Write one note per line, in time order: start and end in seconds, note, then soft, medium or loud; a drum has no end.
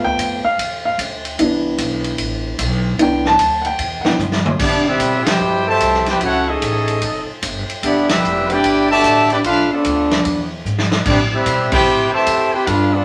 0.00 0.40 F3 medium
0.00 0.40 A3 medium
0.00 0.41 B3 medium
0.04 0.17 D2 medium
0.04 0.41 G5 loud
0.17 0.42 F2 loud
0.17 kick soft
0.17 hi-hat pedal medium
0.17 ride medium
0.44 0.81 F5 medium
0.44 muted upright bass stroke soft
0.58 0.97 E2 medium
0.58 kick soft
0.58 ride medium
0.85 0.98 F5 medium
0.98 1.37 D2 loud
0.98 kick soft
0.98 hi-hat pedal medium
0.98 ride medium
1.25 ride medium
1.38 1.77 C2 medium
1.38 2.95 E3 medium
1.38 2.95 B3 medium
1.38 2.96 D4 medium
1.38 kick soft
1.38 ride medium
1.78 2.17 B1 loud
1.78 kick soft
1.78 hi-hat pedal medium
1.78 ride medium
2.04 ride medium
2.18 2.57 A1 medium
2.18 kick soft
2.18 ride medium
2.58 2.97 B1 loud
2.58 kick soft
2.58 hi-hat pedal medium
2.58 ride medium
2.98 3.37 C2 medium
2.98 3.29 E3 medium
2.98 3.29 B3 medium
2.98 3.30 D4 medium
2.98 kick soft
2.98 ride medium
3.02 3.26 G5 medium
3.25 3.63 A5 loud
3.25 snare medium
3.39 3.78 D2 loud
3.39 kick soft
3.39 hi-hat pedal medium
3.39 ride medium
3.62 3.64 F#5 medium
3.62 ride medium
3.66 4.03 G5 medium
3.79 4.03 E2 loud
3.79 kick soft
3.79 ride medium
4.01 4.18 E3 soft
4.01 4.18 B3 soft
4.01 4.03 F#5 medium
4.01 muted upright bass stroke soft
4.01 snare medium
4.05 4.18 D4 soft
4.05 4.14 G5 medium
4.18 4.58 G2 loud
4.18 hi-hat pedal medium
4.18 mid tom medium
4.32 snare medium
4.46 mid tom medium
4.59 4.99 C3 medium
4.59 4.85 B3 medium
4.59 4.84 D4 medium
4.59 4.84 E4 medium
4.59 4.84 G4 medium
4.59 4.85 D5 loud
4.59 kick medium
4.59 crash loud
4.86 5.26 G3 medium
4.86 5.26 C4 medium
4.86 5.27 C4 medium
4.86 5.26 E4 medium
4.86 5.27 G4 medium
4.86 5.26 B4 medium
4.86 5.27 E5 loud
5.00 5.24 B2 loud
5.00 kick soft
5.00 hi-hat pedal medium
5.00 ride medium
5.26 5.65 B2 medium
5.26 5.67 E4 medium
5.26 5.67 E4 loud
5.26 5.67 G4 medium
5.26 5.67 B4 medium
5.26 5.67 C5 loud
5.26 5.67 G5 loud
5.26 muted upright bass stroke soft
5.26 snare loud
5.26 ride medium
5.40 5.79 G2 medium
5.66 6.04 B2 loud
5.66 6.04 E3 loud
5.66 6.04 A3 loud
5.66 6.06 G4 loud
5.66 6.05 C5 loud
5.66 6.05 E5 medium
5.66 6.05 A5 loud
5.80 6.20 C2 loud
5.80 kick soft
5.80 hi-hat pedal medium
5.80 ride medium
5.94 snare soft
6.06 6.21 B3 medium
6.06 6.22 E4 medium
6.06 6.22 G4 medium
6.06 6.22 B4 medium
6.06 6.22 C5 medium
6.06 6.22 G5 loud
6.06 snare medium
6.06 ride medium
6.21 6.60 C#2 loud
6.21 6.46 A3 medium
6.21 6.46 C#4 medium
6.21 6.47 E4 medium
6.21 6.46 F#4 medium
6.21 6.47 A4 medium
6.21 6.47 C#5 loud
6.21 6.47 F#5 loud
6.21 kick soft
6.21 ride medium
6.49 7.03 E3 medium
6.49 7.29 A3 medium
6.49 7.03 C#4 medium
6.49 7.29 D#4 medium
6.49 7.03 G#4 medium
6.49 7.29 A4 medium
6.49 7.29 D#5 medium
6.61 7.01 A1 loud
6.61 kick soft
6.61 hi-hat pedal medium
6.61 ride medium
6.88 ride medium
7.02 7.26 F1 medium
7.02 kick soft
7.02 ride medium
7.28 muted upright bass stroke soft
7.42 7.66 G1 loud
7.42 kick soft
7.42 hi-hat pedal medium
7.42 ride medium
7.69 muted upright bass stroke soft
7.69 ride medium
7.83 8.22 E1 medium
7.83 8.07 G3 medium
7.83 8.07 B3 medium
7.83 8.08 B3 medium
7.83 8.07 D4 medium
7.83 8.07 E4 medium
7.83 8.08 G4 medium
7.83 8.07 D5 loud
7.83 kick soft
7.83 ride medium
8.09 8.49 G3 medium
8.09 8.48 B3 medium
8.09 8.50 D4 medium
8.09 8.49 E4 medium
8.09 8.50 G4 medium
8.09 8.50 B4 medium
8.09 8.50 E5 loud
8.09 snare loud
8.09 ride medium
8.24 8.62 F1 loud
8.24 hi-hat pedal medium
8.49 8.90 B3 loud
8.49 8.90 D4 loud
8.49 8.91 E4 loud
8.49 8.90 G4 loud
8.49 8.91 B4 loud
8.49 8.90 D5 loud
8.49 8.91 G5 loud
8.49 ride medium
8.63 9.03 G1 medium
8.63 kick soft
8.63 ride medium
8.90 9.28 B2 loud
8.90 9.28 D3 loud
8.90 9.28 A3 loud
8.90 9.28 G4 loud
8.90 9.28 D5 loud
8.90 9.28 E5 loud
8.90 9.28 A5 loud
9.03 9.43 A1 loud
9.03 kick soft
9.03 hi-hat pedal medium
9.03 ride medium
9.30 9.38 B3 medium
9.30 9.38 D4 medium
9.30 9.38 E4 medium
9.30 9.37 G4 medium
9.30 9.38 B4 medium
9.30 9.38 D5 medium
9.30 9.38 G5 medium
9.30 ride medium
9.44 9.68 B1 medium
9.44 9.69 A3 medium
9.44 9.69 D4 medium
9.44 9.69 D4 loud
9.44 9.69 F4 medium
9.44 9.69 A4 medium
9.44 9.69 B4 medium
9.44 9.69 F5 loud
9.44 kick soft
9.44 ride medium
9.70 10.21 F3 medium
9.70 10.21 A3 medium
9.70 10.48 B3 medium
9.70 10.47 D4 medium
9.70 10.22 F4 medium
9.70 10.22 A4 medium
9.70 10.48 D5 medium
9.70 muted upright bass stroke soft
9.85 10.24 D2 loud
9.85 kick soft
9.85 hi-hat pedal medium
9.85 ride medium
10.11 snare medium
10.11 ride medium
10.25 10.64 E2 medium
10.25 kick soft
10.25 ride medium
10.65 11.04 G#2 medium
10.65 hi-hat pedal medium
10.78 snare medium
10.92 snare loud
11.05 11.45 A2 loud
11.05 11.19 E3 medium
11.05 11.18 G3 medium
11.05 11.20 C4 medium
11.05 11.19 D4 medium
11.05 11.19 G4 medium
11.05 11.20 B4 medium
11.05 11.19 D5 loud
11.05 kick medium
11.05 crash loud
11.32 11.70 G3 medium
11.32 11.70 C4 medium
11.32 11.70 E4 medium
11.32 11.70 G4 medium
11.32 11.70 B4 medium
11.32 11.70 E5 medium
11.46 11.70 B2 loud
11.46 kick soft
11.46 hi-hat pedal medium
11.46 ride medium
11.72 12.10 C4 medium
11.72 12.10 E4 loud
11.72 12.10 E4 medium
11.72 12.10 G4 loud
11.72 12.10 B4 loud
11.72 12.10 C5 medium
11.72 12.10 G5 loud
11.72 muted upright bass stroke soft
11.72 kick loud
11.72 crash medium
11.86 12.11 A2 medium
12.11 12.50 C3 loud
12.11 12.50 E3 loud
12.11 12.50 A3 loud
12.11 12.50 G4 loud
12.11 12.50 C5 loud
12.11 12.50 E5 loud
12.11 12.50 A5 loud
12.11 muted upright bass stroke soft
12.26 12.51 F2 medium
12.26 kick soft
12.26 hi-hat pedal medium
12.26 ride medium
12.52 12.68 C4 medium
12.52 12.68 E4 medium
12.52 12.68 G4 medium
12.52 12.65 B4 medium
12.52 12.68 C5 medium
12.52 12.67 G5 loud
12.52 muted upright bass stroke soft
12.66 13.05 G2 medium
12.66 12.92 B3 medium
12.66 12.93 D4 medium
12.66 12.92 D4 medium
12.66 12.94 F4 medium
12.66 12.93 A4 medium
12.66 12.93 B4 loud
12.66 12.93 F5 loud
12.66 kick soft
12.66 ride medium
12.93 13.05 F3 medium
12.93 13.05 B3 medium
12.93 13.05 D4 medium
12.93 13.05 F4 medium
12.93 13.05 A4 medium
12.93 13.05 D5 medium